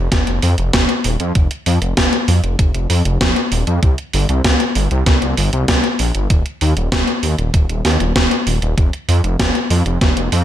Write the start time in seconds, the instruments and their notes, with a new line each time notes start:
0.12 detuned saw bass F1, kick, snare, closed hi-hat
0.27 detuned saw bass F1, closed hi-hat
0.42 detuned saw bass F2, open hi-hat
0.58 detuned saw bass F1, closed hi-hat
0.73 detuned saw bass F1, kick, snare, closed hi-hat
0.89 closed hi-hat
1.04 detuned saw bass D#1, open hi-hat
1.20 detuned saw bass F2, closed hi-hat
1.35 detuned saw bass F1, kick, closed hi-hat
1.51 closed hi-hat
1.66 detuned saw bass F2, open hi-hat
1.82 detuned saw bass F1, closed hi-hat
1.97 detuned saw bass F1, kick, snare, closed hi-hat
2.13 closed hi-hat
2.28 detuned saw bass F2, open hi-hat
2.43 detuned saw bass F1, closed hi-hat
2.59 detuned saw bass F1, kick, closed hi-hat
2.74 detuned saw bass F1, closed hi-hat
2.90 detuned saw bass F2, open hi-hat
3.05 detuned saw bass F1, closed hi-hat
3.21 detuned saw bass F1, kick, snare, closed hi-hat
3.36 closed hi-hat
3.52 detuned saw bass D#1, open hi-hat
3.67 detuned saw bass F2, closed hi-hat
3.83 detuned saw bass C2, kick, closed hi-hat
3.98 closed hi-hat
4.13 detuned saw bass G1, open hi-hat
4.29 detuned saw bass C2, closed hi-hat
4.45 detuned saw bass C2, kick, snare, closed hi-hat
4.60 closed hi-hat
4.75 detuned saw bass G1, open hi-hat
4.91 detuned saw bass C2, closed hi-hat
5.06 detuned saw bass C2, kick, snare, closed hi-hat
5.22 detuned saw bass C2, closed hi-hat
5.37 detuned saw bass G1, open hi-hat
5.53 detuned saw bass C2, closed hi-hat
5.68 detuned saw bass C2, kick, snare, closed hi-hat
5.84 closed hi-hat
5.99 detuned saw bass A#1, open hi-hat
6.15 detuned saw bass G1, closed hi-hat
6.30 detuned saw bass D#1, kick, closed hi-hat
6.46 closed hi-hat
6.61 detuned saw bass D#2, open hi-hat
6.77 detuned saw bass D#1, closed hi-hat
6.92 detuned saw bass D#1, kick, snare, closed hi-hat
7.08 closed hi-hat
7.23 detuned saw bass D#2, open hi-hat
7.39 detuned saw bass D#1, closed hi-hat
7.54 detuned saw bass D#1, kick, closed hi-hat
7.69 detuned saw bass D#1, closed hi-hat
7.85 detuned saw bass D#2, snare, open hi-hat
8.00 detuned saw bass D#1, closed hi-hat
8.16 detuned saw bass D#1, kick, snare, closed hi-hat
8.31 closed hi-hat
8.47 detuned saw bass D#1, open hi-hat
8.62 detuned saw bass D#1, closed hi-hat
8.78 detuned saw bass F1, kick, closed hi-hat
8.93 closed hi-hat
9.08 detuned saw bass F2, open hi-hat
9.24 detuned saw bass F1, closed hi-hat
9.39 detuned saw bass F1, kick, snare, closed hi-hat
9.55 closed hi-hat
9.70 detuned saw bass F2, open hi-hat
9.86 detuned saw bass F1, closed hi-hat
10.01 detuned saw bass F1, kick, snare, closed hi-hat
10.17 detuned saw bass F1, closed hi-hat
10.32 detuned saw bass F2, open hi-hat